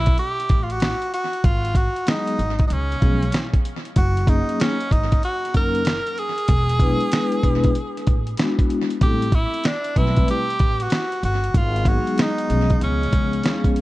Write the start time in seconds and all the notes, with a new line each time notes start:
Already playing: B1 E4
0.06 kick, closed hi-hat
0.18 G4, closed hi-hat
0.40 closed hi-hat
0.49 A1, kick, closed hi-hat
0.63 F4
0.70 F#4, closed hi-hat
0.80 snare, closed hi-hat
1.02 closed hi-hat
1.14 F#4, closed hi-hat
1.33 closed hi-hat
1.44 G#1 F4, kick, closed hi-hat
1.65 closed hi-hat
1.75 F#4, kick, closed hi-hat
1.96 closed hi-hat
2.06 F#3 G#3 B3 D#4 G#4, snare, closed hi-hat
2.27 closed hi-hat
2.39 G#1, closed hi-hat
2.59 kick, closed hi-hat
2.68 C#2 D#4, closed hi-hat
2.73 C#4
2.92 closed hi-hat
3.00 B1 F3 G#3 B3 C#4 G#4, kick, closed hi-hat
3.22 closed hi-hat
3.32 snare, closed hi-hat
3.53 kick, closed hi-hat
3.65 closed hi-hat
3.85 closed hi-hat
3.96 F#1 F#4, kick, closed hi-hat
4.17 closed hi-hat
4.26 F#3 A#3 C#4 D#4 G#4, kick, closed hi-hat
4.49 closed hi-hat
4.60 C#4, snare, closed hi-hat
4.80 closed hi-hat
4.91 G#1 D#4, kick, closed hi-hat
5.12 kick, closed hi-hat
5.23 F#4, closed hi-hat
5.45 closed hi-hat
5.54 F#1 F#3 A#3 C#4 D#4 A#4, kick, closed hi-hat
5.75 closed hi-hat
5.85 snare, closed hi-hat
6.07 closed hi-hat
6.18 G#4, closed hi-hat
6.38 closed hi-hat
6.48 E1, kick, closed hi-hat
6.69 closed hi-hat
6.80 F#3 B3 D4 E4 B4, kick, closed hi-hat
6.86 G#3
7.01 closed hi-hat
7.12 snare, closed hi-hat
7.32 closed hi-hat
7.43 E1 G#3 B3 D4 E4 B4, kick, closed hi-hat
7.64 kick, closed hi-hat
7.75 closed hi-hat
7.97 closed hi-hat
8.07 A1, kick, closed hi-hat
8.27 closed hi-hat
8.37 G#3 B3 D4 E4 F#4, snare, closed hi-hat
8.59 kick, closed hi-hat
8.70 closed hi-hat
8.90 closed hi-hat
9.01 A1 G3 A3 C4 E4 G4 A4, kick, closed hi-hat
9.22 closed hi-hat
9.32 E4, kick, closed hi-hat
9.54 closed hi-hat
9.64 D4, snare, closed hi-hat
9.84 closed hi-hat
9.95 B1 G3 A3 C4 E4 B4, kick, closed hi-hat
10.16 kick, closed hi-hat
10.28 G4, closed hi-hat
10.50 closed hi-hat
10.59 A1, kick, closed hi-hat
10.80 F#4, closed hi-hat
10.90 snare, closed hi-hat
11.12 closed hi-hat
11.23 G1 F#4, closed hi-hat
11.44 closed hi-hat
11.54 G#1 F4, kick, closed hi-hat
11.76 closed hi-hat
11.85 F#3 G#3 B3 D#4 F#4 G#4, kick, closed hi-hat
12.07 closed hi-hat
12.18 D#4, snare, closed hi-hat
12.38 closed hi-hat
12.48 B1 F3 G#3 B3 C#4 G#4, closed hi-hat
12.70 kick, closed hi-hat
12.81 C#2 C#4, closed hi-hat
13.03 closed hi-hat
13.13 C#2, kick, closed hi-hat
13.33 closed hi-hat
13.43 G#3 B3 C#4 D#4 G#4, snare, closed hi-hat
13.49 F3
13.64 kick, closed hi-hat
13.76 closed hi-hat